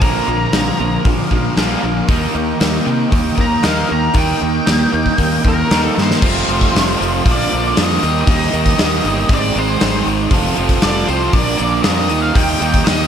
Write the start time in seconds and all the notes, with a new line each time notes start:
0.01 A#1 A#2 D3 F3 A#3 D4 F4 A#4 F5 A#5, kick, open hi-hat
0.28 A#1 A#2 D3 F3 A#3
0.52 A#1 A#2 D3 F3 A#3, snare, open hi-hat
0.78 A#1 A#2 D3 F3 A#3
1.05 A#1 A#2 D3 F3 A#3, kick, open hi-hat
1.31 A#1 A#2 D3 F3 A#3, kick
1.56 A#1 A#2 D3 F3 A#3, snare, open hi-hat
1.84 A#1 A#2 D3 F3 A#3
2.08 D#2 D#3 A#3 D#4 G4 A#4 G5, kick, open hi-hat
2.35 D#2 D#3 A#3 D#4
2.60 D#2 D#3 A#3 D#4, snare, open hi-hat
2.87 C3 D#3 A#3 D#4
3.12 D#2 D#3 A#3 D#4, kick, open hi-hat
3.38 D#2 D#3 A#3 D#4 A#5, kick
3.63 D#2 D#3 A#3 D#4 F5, snare, open hi-hat
3.89 D#2 D#3 A#3 D#4 A#5
4.14 D#2 D#3 A#3 D#4, kick, open hi-hat
4.18 G5
4.41 D#2 D#3 A#3 D#4
4.66 D#2 D#3 A#3 D#4, snare, open hi-hat
4.93 D#2 D#3 A#3 D#4
5.06 kick
5.18 D#2 D#3 A#3 D#4, kick, open hi-hat
5.43 D#2 D#3 A#3 D#4, kick
5.48 A#4
5.71 D#2 D#3 A#3 D#4, snare, open hi-hat
5.82 A4
5.95 G2 D#3 A#3 D#4, snare
6.02 C5
6.11 snare
6.21 F1 F2 C3 F3 A3 C4 F4 A4 F5, kick, crash
6.25 C4 F4
6.48 F1 F2 C3 F3 A3 C4 F4, open hi-hat
6.61 kick
6.75 F1 F2 C3 F3 A3 C4 F4, snare, open hi-hat
6.97 F1 F2 C3
7.01 C3 F3 A3 C4 F4, open hi-hat
7.25 A#1 A#2 D3 F3 A#3 D4 F4 A#4 F5, kick, open hi-hat
7.31 D5
7.51 A#1 A#2 D3 F3 A#3 D4 F4, open hi-hat
7.75 F2 A#2 D3 F3 A#3 D4 F4, snare, open hi-hat
7.82 D#5
8.00 D#2 D#3 G3 A#3 D#4 G4 D#5, open hi-hat
8.04 G4
8.21 D#5
8.27 D#2 D#3 G3 A#3 D#4 G4, kick, open hi-hat
8.53 D#2 D#3 G3 A#3 D#4 G4, open hi-hat
8.66 kick
8.79 D#2 D#3 G3 A#3 D#4 G4, snare, open hi-hat
9.04 G1 D#3 G3 A#3 D#4 G4, open hi-hat
9.29 G#1 G#2 D#3 G#3 C4 D#4 G#4 C5, kick, open hi-hat
9.34 D5
9.56 G#1 G#2 D#3 G#3 C4 D#4 G#4 C5, open hi-hat
9.81 G#1 G#2 D#3 G#3 C4 D#4 G#4, snare, open hi-hat
10.06 G#1 G#2 D#3 G#3 C4 D#4 G#4, open hi-hat
10.29 F1 F2 C3 F3 A3 C4 F4 C5, kick, open hi-hat
10.33 A4
10.56 F1 F2 C3 F3 C4 F4 A4, open hi-hat
10.69 kick
10.81 F1 F2 C3 F3 C4 F4 A4 D5, snare, open hi-hat
11.07 C2 F2 C3 F3 C4 F4 A4 C5, open hi-hat
11.33 A#1 A#2 D3 F3 A#3 D4 F4 A#4 D5, kick, open hi-hat
11.58 A#1 A#2 D3 F3 A#3 D4 A#4 D5, open hi-hat
11.82 F2 A#2 D3 F3 A#3 D4 A#4 D#5, snare, open hi-hat
12.08 D#2 D#3 G3 A#3 D#4 G4 D#5, open hi-hat
12.12 D#4 G4
12.22 F5
12.35 D#2 D#3 G3 A#3 D#4 G4 G5, kick, open hi-hat
12.60 D#2 D#3 G3 A#3 D#4 G4, open hi-hat
12.72 G5, kick
12.84 D#2 D#3 G3 A#3 D#4 G4 D#5, snare, open hi-hat